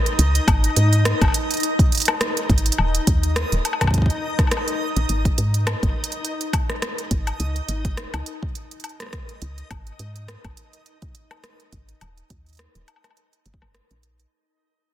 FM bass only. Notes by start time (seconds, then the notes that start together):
0.19 C#2
0.48 G#1
0.77 G#2
1.21 G#1
2.50 G#1
2.79 D#1
3.07 D#2
3.52 D#1
4.96 A#1
5.09 G#1
5.38 G#2
5.83 G#1
7.11 G#1
7.40 C#2
7.69 G#1
8.14 C#2
9.42 C#2
9.71 G#1
9.99 G#2
10.45 G#1
11.73 G#1
12.01 D#1
12.30 D#2
12.75 D#1
13.46 G1
13.62 G1
13.91 A#1